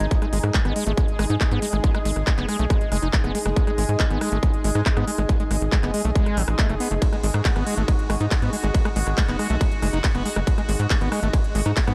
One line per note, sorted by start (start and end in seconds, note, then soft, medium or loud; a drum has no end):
0.00 0.08 G#1 medium
0.00 0.06 G#3 loud
0.00 0.12 D#4 medium
0.00 11.94 D#4 medium
0.00 11.94 G#4 loud
0.00 11.94 D#5 medium
0.00 0.13 G#5 medium
0.00 closed hi-hat soft
0.00 noise sweep medium
0.11 0.14 G#3 loud
0.11 11.94 G#3 medium
0.11 7.04 G#4 medium
0.11 kick loud
0.11 closed hi-hat loud
0.22 0.25 G#3 loud
0.22 cross-stick soft
0.22 closed hi-hat soft
0.33 0.40 G#1 medium
0.33 0.38 G#3 medium
0.33 open hi-hat loud
0.44 0.51 G#2 medium
0.44 cross-stick medium
0.54 0.60 G#3 medium
0.54 kick loud
0.54 clap loud
0.54 closed hi-hat loud
0.65 0.72 G#1 medium
0.65 0.73 B3 medium
0.65 cross-stick soft
0.65 closed hi-hat soft
0.76 0.84 G#3 medium
0.76 open hi-hat loud
0.87 0.94 G#1 medium
0.87 0.92 A3 loud
0.87 closed hi-hat soft
0.97 1.01 G#3 loud
0.97 kick loud
0.97 cross-stick soft
0.97 closed hi-hat loud
1.08 closed hi-hat soft
1.19 1.26 G#1 medium
1.19 1.25 G#3 medium
1.19 cross-stick medium
1.19 open hi-hat loud
1.30 1.37 G#2 medium
1.30 1.35 D#4 medium
1.30 closed hi-hat soft
1.41 1.44 A3 medium
1.41 kick loud
1.41 cross-stick soft
1.41 clap loud
1.41 closed hi-hat loud
1.51 1.59 G#2 medium
1.51 1.60 B3 medium
1.51 closed hi-hat soft
1.62 1.66 G#3 loud
1.62 open hi-hat loud
1.73 1.80 G#1 medium
1.73 1.76 G#3 loud
1.73 cross-stick soft
1.73 closed hi-hat soft
1.84 1.87 G#3 loud
1.84 kick loud
1.84 closed hi-hat loud
1.95 1.98 G#3 loud
1.95 cross-stick medium
1.95 closed hi-hat soft
2.05 2.13 G#1 loud
2.05 2.11 G#3 medium
2.05 open hi-hat loud
2.16 2.24 G#1 medium
2.16 cross-stick soft
2.16 closed hi-hat soft
2.27 2.32 G#3 medium
2.27 kick loud
2.27 clap loud
2.27 closed hi-hat medium
2.38 2.45 F#1 medium
2.38 2.46 B3 medium
2.38 clap soft
2.38 closed hi-hat soft
2.49 2.57 G#3 medium
2.49 cross-stick soft
2.49 open hi-hat loud
2.59 2.67 B1 medium
2.59 2.65 A3 loud
2.59 closed hi-hat soft
2.70 2.73 G#3 loud
2.70 kick loud
2.70 cross-stick medium
2.70 closed hi-hat loud
2.81 closed hi-hat soft
2.92 2.99 F#1 medium
2.92 2.97 G#3 medium
2.92 cross-stick soft
2.92 open hi-hat loud
3.02 3.10 F#1 medium
3.02 3.08 D#4 medium
3.02 closed hi-hat soft
3.13 3.17 A3 medium
3.13 kick loud
3.13 clap loud
3.13 closed hi-hat loud
3.24 3.31 F#1 medium
3.24 3.32 B3 medium
3.24 cross-stick soft
3.24 closed hi-hat soft
3.35 3.38 G#3 loud
3.35 open hi-hat loud
3.46 3.53 F#1 medium
3.46 3.49 G#3 loud
3.46 cross-stick medium
3.56 3.60 G#3 loud
3.56 kick loud
3.56 closed hi-hat loud
3.67 3.71 G#3 loud
3.67 cross-stick soft
3.67 closed hi-hat soft
3.78 3.85 G#1 medium
3.78 3.83 G#3 medium
3.78 open hi-hat loud
3.89 3.96 G#2 medium
3.89 closed hi-hat soft
4.00 4.05 G#3 medium
4.00 kick loud
4.00 cross-stick soft
4.00 clap loud
4.00 closed hi-hat medium
4.10 4.18 G#1 medium
4.10 4.19 B3 medium
4.10 closed hi-hat soft
4.21 4.29 G#3 medium
4.21 cross-stick medium
4.21 open hi-hat loud
4.32 4.39 G#1 medium
4.32 4.37 A3 loud
4.32 closed hi-hat soft
4.43 4.46 G#3 loud
4.43 kick loud
4.43 cross-stick soft
4.43 closed hi-hat medium
4.54 closed hi-hat soft
4.64 4.72 G#1 medium
4.64 4.70 G#3 medium
4.64 open hi-hat loud
4.75 4.83 G#2 medium
4.75 4.81 D#4 medium
4.75 cross-stick soft
4.86 4.89 A3 medium
4.86 kick loud
4.86 clap loud
4.86 closed hi-hat medium
4.97 5.04 G#2 medium
4.97 5.05 B3 medium
4.97 cross-stick medium
4.97 closed hi-hat soft
5.08 5.11 G#3 loud
5.08 open hi-hat loud
5.18 5.26 G#1 medium
5.18 5.22 G#3 loud
5.18 cross-stick soft
5.18 closed hi-hat soft
5.29 5.32 G#3 loud
5.29 kick loud
5.29 closed hi-hat loud
5.40 5.43 G#3 loud
5.40 closed hi-hat soft
5.51 5.58 G#1 medium
5.51 5.56 G#3 medium
5.51 cross-stick soft
5.51 open hi-hat loud
5.62 5.69 G#1 medium
5.62 closed hi-hat soft
5.72 5.78 G#3 medium
5.72 kick loud
5.72 cross-stick medium
5.72 clap loud
5.72 closed hi-hat medium
5.83 5.90 F#1 medium
5.83 5.91 B3 medium
5.83 clap soft
5.83 closed hi-hat soft
5.94 6.02 G#3 medium
5.94 open hi-hat loud
6.05 6.12 B1 medium
6.05 6.10 A3 loud
6.05 closed hi-hat soft
6.15 6.39 G#3 loud
6.15 kick loud
6.15 closed hi-hat medium
6.26 cross-stick soft
6.26 closed hi-hat soft
6.37 6.44 A1 medium
6.37 6.42 F#3 loud
6.37 open hi-hat loud
6.48 6.55 A1 medium
6.48 cross-stick medium
6.59 6.67 A3 medium
6.59 kick loud
6.59 clap loud
6.59 closed hi-hat medium
6.69 6.77 F#1 medium
6.69 6.75 A3 medium
6.69 cross-stick soft
6.69 closed hi-hat soft
6.80 6.88 B3 loud
6.80 open hi-hat loud
6.91 6.98 F#1 medium
6.91 6.94 A3 medium
6.91 closed hi-hat soft
7.02 7.05 G#3 loud
7.02 11.94 F#4 medium
7.02 kick loud
7.02 closed hi-hat loud
7.02 ride medium
7.13 7.16 G#3 loud
7.13 cross-stick soft
7.13 closed hi-hat soft
7.23 7.31 G#1 loud
7.23 7.27 G#3 medium
7.23 open hi-hat loud
7.34 7.42 G#2 medium
7.34 cross-stick medium
7.45 7.50 G#3 medium
7.45 kick loud
7.45 clap loud
7.45 closed hi-hat medium
7.45 ride medium
7.56 7.63 G#1 medium
7.56 7.64 B3 medium
7.56 cross-stick soft
7.56 closed hi-hat soft
7.67 7.75 G#3 medium
7.67 open hi-hat loud
7.77 7.85 G#1 medium
7.77 7.83 A3 loud
7.88 7.91 G#3 loud
7.88 kick loud
7.88 cross-stick soft
7.88 closed hi-hat medium
7.88 ride medium
7.99 closed hi-hat soft
8.10 8.17 G#1 medium
8.10 8.15 G#3 medium
8.10 cross-stick medium
8.10 open hi-hat loud
8.20 8.28 G#2 medium
8.20 8.26 D#4 medium
8.20 closed hi-hat soft
8.31 8.35 A3 medium
8.31 kick loud
8.31 cross-stick soft
8.31 clap loud
8.31 closed hi-hat medium
8.31 ride medium
8.42 8.49 G#2 medium
8.42 8.50 B3 medium
8.42 closed hi-hat soft
8.53 8.56 G#3 loud
8.53 open hi-hat loud
8.64 8.71 G#1 medium
8.64 8.67 G#3 loud
8.64 cross-stick soft
8.64 closed hi-hat soft
8.74 8.78 G#3 loud
8.74 kick loud
8.74 closed hi-hat loud
8.74 ride medium
8.85 8.89 G#3 loud
8.85 cross-stick medium
8.85 closed hi-hat soft
8.96 9.03 G#1 medium
8.96 8.99 G#3 medium
8.96 open hi-hat loud
9.07 9.14 G#1 medium
9.07 cross-stick soft
9.07 closed hi-hat soft
9.18 9.23 G#3 medium
9.18 kick loud
9.18 clap loud
9.18 closed hi-hat medium
9.18 ride medium
9.28 9.36 F#1 medium
9.28 9.37 B3 medium
9.28 clap soft
9.28 closed hi-hat soft
9.39 9.47 G#3 medium
9.39 cross-stick soft
9.39 open hi-hat loud
9.50 9.57 B1 medium
9.50 9.55 A3 loud
9.50 closed hi-hat soft
9.61 9.64 G#3 loud
9.61 kick loud
9.61 cross-stick medium
9.61 closed hi-hat medium
9.61 ride medium
9.72 closed hi-hat soft
9.82 9.90 F#1 loud
9.82 9.88 G#3 medium
9.82 cross-stick soft
9.82 open hi-hat loud
9.93 10.01 F#1 medium
9.93 9.99 D#4 medium
9.93 closed hi-hat soft
10.04 10.07 A3 medium
10.04 kick loud
10.04 clap loud
10.04 closed hi-hat loud
10.04 ride medium
10.15 10.22 F#1 medium
10.15 10.23 B3 medium
10.15 cross-stick soft
10.15 closed hi-hat soft
10.26 10.29 G#3 loud
10.26 open hi-hat loud
10.36 10.44 F#1 medium
10.36 10.40 G#3 loud
10.36 cross-stick medium
10.36 closed hi-hat soft
10.47 10.50 G#3 loud
10.47 kick loud
10.47 closed hi-hat loud
10.47 ride medium
10.58 10.61 G#3 loud
10.58 cross-stick soft
10.58 closed hi-hat soft
10.69 10.76 G#1 loud
10.69 10.72 G#3 medium
10.69 open hi-hat loud
10.80 10.87 G#2 medium
10.80 closed hi-hat soft
10.90 10.96 G#3 medium
10.90 kick loud
10.90 cross-stick soft
10.90 clap loud
10.90 closed hi-hat medium
10.90 ride medium
11.01 11.08 G#1 medium
11.01 11.09 B3 medium
11.01 closed hi-hat soft
11.12 11.20 G#3 medium
11.12 cross-stick medium
11.12 open hi-hat loud
11.23 11.30 G#1 medium
11.23 11.28 A3 loud
11.23 closed hi-hat soft
11.33 11.37 G#3 loud
11.33 kick loud
11.33 cross-stick soft
11.33 closed hi-hat loud
11.33 ride medium
11.44 closed hi-hat soft
11.55 11.62 G#1 medium
11.55 11.60 G#3 medium
11.55 open hi-hat loud
11.66 11.73 G#2 medium
11.66 11.71 D#4 medium
11.66 cross-stick soft
11.66 closed hi-hat soft
11.77 11.80 A3 medium
11.77 kick loud
11.77 clap loud
11.77 closed hi-hat loud
11.77 ride medium
11.87 11.94 G#2 medium
11.87 11.94 B3 medium
11.87 cross-stick medium
11.87 closed hi-hat soft